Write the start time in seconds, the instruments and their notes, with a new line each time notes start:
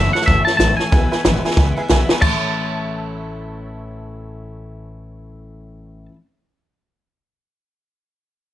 Already playing: upright bass F#1, steel-string acoustic guitar A2 E3 A3 C#4 E4, clean electric guitar E5
0.13 steel-string acoustic guitar C#4 E4, honky-tonk piano C#5 E5 A5, clean electric guitar F#5, snare
0.17 steel-string acoustic guitar A3
0.22 snare
0.26 upright bass G1, steel-string acoustic guitar E3 A3, honky-tonk piano C#5 E5 A5, clean electric guitar E5, kick, snare
0.30 steel-string acoustic guitar C#4 E4
0.45 steel-string acoustic guitar E4, honky-tonk piano C#5 E5 A5, clean electric guitar A5, muted upright bass stroke, snare
0.49 steel-string acoustic guitar A3 C#4
0.57 upright bass A1, steel-string acoustic guitar A2 E3 A3 C#4, honky-tonk piano C#5 E5 A5, clean electric guitar A5, snare, hi-hat pedal
0.62 steel-string acoustic guitar E4
0.77 steel-string acoustic guitar C#4 E4, honky-tonk piano C#5 E5 A5, clean electric guitar G#5, muted upright bass stroke, snare
0.82 steel-string acoustic guitar A3
0.91 upright bass B1, steel-string acoustic guitar E2 B2 E3 G#3 B3 E4, honky-tonk piano B4 E5 G#5, kick, snare
1.11 steel-string acoustic guitar E3 G#3 B3 E4, honky-tonk piano B4 E5 G#5, snare
1.24 upright bass G#1, steel-string acoustic guitar E2 B2 E3 G#3 B3 E4, honky-tonk piano B4 E5 G#5, snare, hi-hat pedal
1.44 steel-string acoustic guitar E3 G#3 B3 E4, honky-tonk piano B4 E5 G#5, muted upright bass stroke, snare
1.51 snare
1.56 upright bass C#2, steel-string acoustic guitar E3 G#3 B3, honky-tonk piano B4 E5 G#5, kick, snare
1.60 steel-string acoustic guitar E4
1.77 steel-string acoustic guitar E3 G#3 B3 E4, honky-tonk piano B4 E5 G#5, muted upright bass stroke
1.88 upright bass B1, steel-string acoustic guitar E2 B2 E3 G#3 B3 E4, honky-tonk piano B4 E5 G#5, snare, hi-hat pedal
2.09 steel-string acoustic guitar E3 G#3 B3 E4, honky-tonk piano B4 E5 G#5, muted upright bass stroke, snare
2.20 upright bass A1, steel-string acoustic guitar A2 E3, honky-tonk piano C#5 E5, clean electric guitar A5, kick, crash
2.24 steel-string acoustic guitar A3 C#4, honky-tonk piano A5
2.30 steel-string acoustic guitar E4